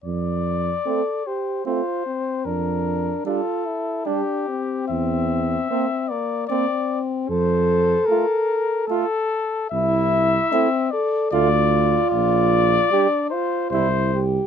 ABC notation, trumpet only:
X:1
M:3/4
L:1/8
Q:1/4=75
K:F
V:1 name="Trumpet"
d3 c c2 | B2 A2 G2 | e3 d d z | c2 B2 A2 |
e3 d d2 | d3 c c z |]